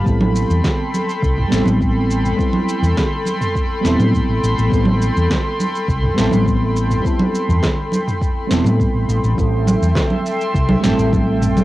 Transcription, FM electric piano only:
X:1
M:4/4
L:1/8
Q:1/4=103
K:Am
V:1 name="FM electric piano"
[G,B,CEA]4- [G,B,CEA] [G,B,CEA]3 | [G,B,CEA]4- [G,B,CEA] [G,B,CEA]3 | [G,B,CEA]4- [G,B,CEA] [G,B,CEA]3 | [G,B,CEA]4- [G,B,CEA] [G,B,CEA]3 |
[G,A,CEA]4- [G,A,CEA] [G,A,CEA]3 |]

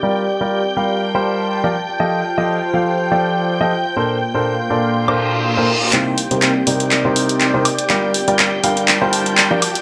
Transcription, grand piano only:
X:1
M:4/4
L:1/16
Q:"Swing 16ths" 1/4=122
K:Cdor
V:1 name="Grand piano"
[G,FGBd]2 z [G,FGBd]2 z [G,FGBf]3 [G,FGBc]4 [F,FGBd] z2 | [F,FGAe]2 z [F,FGAe]2 z [F,FGAf]3 [F,FGAd]4 [F,FGAe] z2 | [B,,DABc]2 z [B,,DABc]2 z [B,,DABd]3 [B,,DABc]4 [B,,DABc] z2 | [C,EGBc]2 z [C,EGBc]2 z [C,EGBd]3 [C,EGBc]4 [C,EGBc] z2 |
[G,FGBd]2 z [G,FGBd]2 z [G,FGBf]3 [G,FGBc]4 [F,FGBd] z2 |]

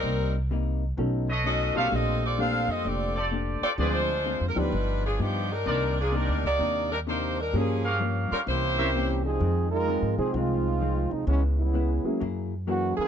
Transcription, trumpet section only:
X:1
M:4/4
L:1/8
Q:"Swing" 1/4=128
K:Cm
V:1 name="Trumpet section"
z4 z [=A=B^c^d]2 [GA=cf] | z4 z [G=Acd]3 | [FAcd] z6 z | [EBcd]3 z4 z |
z [GB_df]3 z [Bcd=e] z2 | [K:Fm] z8 | z8 |]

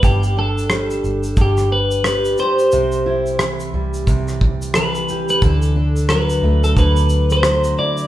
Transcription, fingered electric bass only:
X:1
M:4/4
L:1/8
Q:"Swing 16ths" 1/4=89
K:G
V:1 name="Fingered electric bass" clef=bass
G,,,3 G,,, G,,,3 z | C,,3 C,, C,,4 | D,,3 D,, D,,3 z |]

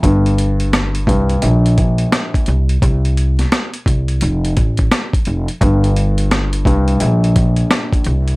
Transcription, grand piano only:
X:1
M:4/4
L:1/8
Q:"Swing 16ths" 1/4=86
K:Gm
V:1 name="Grand piano" clef=bass
G,,3 G,, B,,, B,,,2 z | z8 | G,,3 G,, B,,, B,,,2 z |]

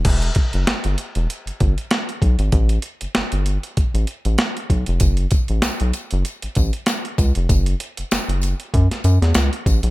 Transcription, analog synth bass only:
X:1
M:4/4
L:1/16
Q:"Swing 16ths" 1/4=97
K:Emix
V:1 name="Analog synth bass" clef=bass
E,,,2 z F,,, =G,,, G,,, z E,,, z G,,, G,,, z3 B,,, ^G,,, | A,,,2 z =G,,, G,,, G,,,2 z A,,, A,,, z A,,, z2 B,,, ^E,,, | F,,,2 z A,,, B,,, B,,, z F,,, z A,,, A,,, z3 C,, ^E,,, | F,,,2 z F,,, F,,, F,,,2 z F,, z F,, E,, C,, z A,,, ^A,,, |]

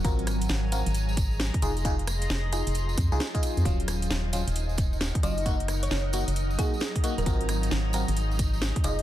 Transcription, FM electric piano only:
X:1
M:4/4
L:1/16
Q:"Swing 16ths" 1/4=133
K:Abmix
V:1 name="FM electric piano"
[CFGB]6 [CFGB] z6 z [EFA] z | [EFA] z4 z [EFA] z4 [EFA] z [EFA]3 | [G,DF]6 [G,DF] z6 z [G,DF] z | [B,EG] z4 z [B,EG] z3 [B,EG] z3 [B,EG] z |
[CFGB]6 [CFGB] z6 z [EFA] z |]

